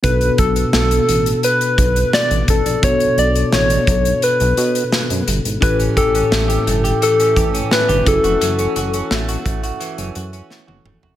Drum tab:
HH |xxxx-xxxxxxx-xxx|xxxx-xxxxxxx-xxx|xxxx-xxxxxxx-xxx|xxxx-xxxxxxx----|
SD |----o-------o---|----o-------o---|----o-------o---|----o-------o---|
T1 |----------------|----------------|----------------|-------------o--|
T2 |----------------|----------------|----------------|--------------o-|
FT |----------------|----------------|----------------|---------------o|
BD |o-o-------o---o-|o-----o---------|o-o-------o---o-|------o---------|